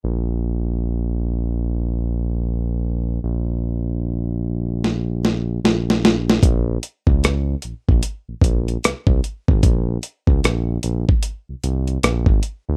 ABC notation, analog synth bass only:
X:1
M:4/4
L:1/16
Q:"Swing 16ths" 1/4=75
K:Bbm
V:1 name="Analog synth bass" clef=bass
B,,,16 | B,,,12 B,,,4 | B,,,2 z D,,3 B,,, B,,, z B,,, B,,,2 C,, C,, z A,,, | B,,,2 z D,, B,,,2 B,,, z2 C,, C,,2 B,,, A,,, z =D,, |]